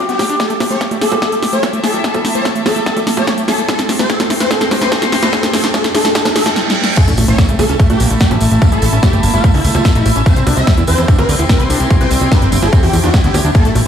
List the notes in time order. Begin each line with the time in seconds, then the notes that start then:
Already playing: C4 G4 G5 C6
0.09 B3 G4, closed hi-hat
0.19 G4, snare, open hi-hat, high bongo
0.30 D4, closed hi-hat
0.40 A3 A4, kick, snare, closed hi-hat, riser, high bongo
0.50 A3 E4, closed hi-hat
0.60 A3, snare, open hi-hat, high bongo
0.71 A3 C#5, closed hi-hat
0.79 A3 E5, kick, snare, closed hi-hat
0.91 A3, closed hi-hat, high bongo
1.01 A3 A4, snare, open hi-hat
1.12 A3, closed hi-hat, high bongo
1.22 A3 A4, kick, snare, closed hi-hat
1.32 A3, closed hi-hat
1.43 A3, snare, open hi-hat, high bongo
1.53 A3 C#5, closed hi-hat
1.63 A3, kick, snare, closed hi-hat, high bongo
1.68 A5
1.73 A3, closed hi-hat
1.84 A3 A4, snare, open hi-hat
1.94 A3, closed hi-hat, high bongo
2.04 A3 A4, kick, snare, closed hi-hat
2.14 A3, closed hi-hat, high bongo
2.25 A3, snare, open hi-hat
2.35 A3 C#5, closed hi-hat
2.45 A3, kick, snare, closed hi-hat, high bongo
2.56 A3, closed hi-hat
2.66 A3 A4, snare, open hi-hat, high bongo
2.76 A3, closed hi-hat
2.86 A3 A4, kick, snare, closed hi-hat
2.97 A3, closed hi-hat, high bongo
3.07 A3, snare, open hi-hat
3.17 A3 C#5, closed hi-hat, high bongo
3.27 A3, kick, snare, closed hi-hat
3.38 A3, closed hi-hat
3.48 A3 A4, snare, open hi-hat, high bongo
3.58 A3, closed hi-hat
3.69 A3 C4 A4, kick, snare, closed hi-hat, high bongo
3.79 A3 G5, snare, closed hi-hat
3.85 A3 C6, snare, open hi-hat
3.97 A3 G4 C5, snare, closed hi-hat, high bongo
4.10 A3 A4, kick, snare, closed hi-hat
4.20 A3, snare, closed hi-hat, high bongo
4.30 A3, snare, open hi-hat
4.40 A3 C5, snare, closed hi-hat
4.51 A3 A4, kick, snare, closed hi-hat, high bongo
4.61 A3, snare, closed hi-hat
4.71 A3, snare, open hi-hat, high bongo
4.82 A3 C5, snare, closed hi-hat
4.92 A3 A4, kick, snare, closed hi-hat
5.02 A3, snare, closed hi-hat, high bongo
5.12 A3, snare, open hi-hat
5.23 A3 C5, snare, closed hi-hat, high bongo
5.33 A3 A4, kick, snare, closed hi-hat
5.43 A3, snare, closed hi-hat
5.53 A3 A4, snare, open hi-hat, high bongo
5.64 A3, snare, closed hi-hat
5.74 A3 A4, kick, snare, closed hi-hat, high bongo
5.84 A3, snare, closed hi-hat
5.95 A3 A4, snare, open hi-hat
6.05 A3, snare, high bongo
6.15 A3 A4, kick, snare, closed hi-hat, reverse cymbal
6.25 A3, snare, closed hi-hat, high bongo
6.36 A3 A4, snare, open hi-hat
6.46 A3, snare, closed hi-hat
6.56 snare
6.70 snare
6.84 snare
6.97 A3 E4 A4, kick, closed hi-hat, crash, tambourine, impact
7.08 A1 C#4, closed hi-hat, tambourine
7.17 A1 A3, open hi-hat, tambourine, high bongo
7.28 A1 A3 E4 C#5, closed hi-hat, tambourine
7.38 A#3, kick, snare, closed hi-hat, tambourine
7.49 C#2 A3 E5, closed hi-hat, tambourine
7.55 C#2 A3 A4 A5, open hi-hat, tambourine, high bongo
7.69 C#2 C#4, closed hi-hat, tambourine
7.79 A3, kick, closed hi-hat, tambourine
7.90 A#1 A3 G4, closed hi-hat, tambourine, high bongo
8.00 A#1 A#3, open hi-hat, tambourine
8.10 A#1 A3, closed hi-hat, tambourine
8.20 A3 G4, kick, snare, closed hi-hat, tambourine
8.31 A1 C#4, closed hi-hat, tambourine, high bongo
8.41 A1 A3, open hi-hat, tambourine
8.51 A1 A3, closed hi-hat, tambourine
8.62 A#3, kick, closed hi-hat, tambourine, high bongo
8.72 A1 A3 A4, closed hi-hat, tambourine
8.82 A1 A3, open hi-hat, tambourine
8.93 A1 C#4, closed hi-hat, tambourine
9.03 A3 G4, kick, snare, closed hi-hat, tambourine, high bongo
9.13 G1 A3, closed hi-hat, tambourine
9.23 G1 A#3, open hi-hat, tambourine
9.34 G1 A3 F4, closed hi-hat, tambourine, high bongo
9.44 A3, kick, closed hi-hat, tambourine
9.54 C#2 C#4 E4, open hi-hat, tambourine
9.64 C#2 A3, open hi-hat, tambourine
9.75 C#2 A3 F4, closed hi-hat, tambourine, high bongo
9.84 A#3, kick, snare, closed hi-hat, tambourine
9.95 A1 A3 E4, closed hi-hat, tambourine
10.06 A1 A3, open hi-hat, tambourine, high bongo
10.16 A1 C#4, closed hi-hat, tambourine
10.26 C4 C5, kick, closed hi-hat, tambourine
10.33 C2 C4 G4, closed hi-hat, tambourine
10.47 C2 D4, open hi-hat, tambourine, high bongo
10.57 C2 C4 E5, closed hi-hat, tambourine
10.67 C4, kick, snare, closed hi-hat, tambourine
10.77 E2 E4, closed hi-hat, tambourine, high bongo
10.87 E2 C4 C5, open hi-hat, tambourine
10.98 E2 C4, closed hi-hat, tambourine
11.08 D4 G5 C6, kick, closed hi-hat, tambourine
11.18 D2 C4 B4, closed hi-hat, tambourine, high bongo
11.29 D2 C4, open hi-hat, tambourine
11.39 D2 E4, closed hi-hat, tambourine
11.49 C4 B4, kick, snare, closed hi-hat, tambourine, high bongo
11.59 C2 C4, closed hi-hat, tambourine
11.70 C2 D4, open hi-hat, tambourine
11.80 C2 C4, closed hi-hat, tambourine
11.90 C4, kick, closed hi-hat, tambourine, high bongo
12.01 C2 E4 C5, closed hi-hat, tambourine
12.11 C2 C4, open hi-hat, tambourine
12.21 C2 C4, closed hi-hat, tambourine, high bongo
12.32 D4 B4, kick, snare, closed hi-hat, tambourine
12.42 G1 C4, closed hi-hat, tambourine
12.52 G1 C4, open hi-hat, tambourine
12.62 G1 E4 A4, closed hi-hat, tambourine, high bongo
12.73 C4, kick, closed hi-hat, tambourine
12.83 E2 C4 G4, open hi-hat, tambourine
12.93 E2 E4, open hi-hat, tambourine, high bongo
13.03 E2 D4 F#4, closed hi-hat, tambourine
13.14 C4, kick, snare, closed hi-hat, tambourine
13.24 D2 B3 G4, closed hi-hat, tambourine
13.34 D2 G4, open hi-hat, tambourine, high bongo
13.45 D2 D4, closed hi-hat
13.54 A3 A#3 A4, kick, closed hi-hat, tambourine
13.65 A1 A3, closed hi-hat, tambourine
13.75 A1 A3, open hi-hat, tambourine, high bongo